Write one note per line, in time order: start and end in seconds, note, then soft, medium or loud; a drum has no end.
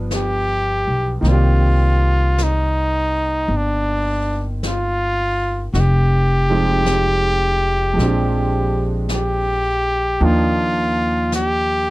0.00 0.83 G1 medium
0.00 1.24 F3 soft
0.00 1.24 G3 soft
0.00 1.25 B3 soft
0.00 1.25 D4 soft
0.00 1.25 F4 medium
0.11 1.17 G4 medium
0.11 brush sweep soft
0.11 snare soft
0.11 hi-hat pedal medium
0.87 1.21 B1 medium
1.21 3.45 C2 medium
1.21 5.73 D#3 soft
1.21 5.74 A#3 soft
1.21 5.74 C4 soft
1.21 1.30 D#4 medium
1.21 brush sweep soft
1.21 snare soft
1.28 2.45 F4 medium
1.28 5.78 G4 soft
1.28 5.76 D5 soft
2.38 brush sweep soft
2.38 snare soft
2.38 hi-hat pedal medium
2.43 3.58 D#4 medium
3.48 5.69 G1 medium
3.48 brush sweep soft
3.57 4.48 D4 medium
4.63 brush sweep soft
4.63 snare soft
4.63 hi-hat pedal soft
4.68 5.68 F4 medium
5.74 7.93 F1 medium
5.74 5.81 F#4 medium
5.74 brush sweep soft
5.74 snare soft
5.80 8.94 G4 medium
6.50 7.92 F3 soft
6.50 7.94 G#3 soft
6.50 7.97 C4 soft
6.50 7.98 D#4 soft
6.50 7.98 G4 medium
6.86 brush sweep soft
6.86 snare soft
6.86 hi-hat pedal soft
7.93 10.16 A#1 medium
7.93 10.18 F3 soft
7.93 10.19 G#3 soft
7.99 10.21 C4 soft
7.99 10.21 D4 soft
7.99 brush sweep soft
7.99 snare soft
8.05 10.24 G4 medium
9.09 brush sweep soft
9.09 snare soft
9.09 hi-hat pedal medium
9.15 10.26 G4 medium
10.20 11.90 D#2 medium
10.20 11.90 F3 medium
10.20 11.90 A#3 soft
10.20 11.90 D4 soft
10.20 11.90 D#4 soft
10.20 11.90 G5 medium
10.20 brush sweep soft
10.24 11.34 F4 medium
11.32 11.90 G4 medium
11.32 brush sweep soft
11.32 snare soft
11.32 hi-hat pedal medium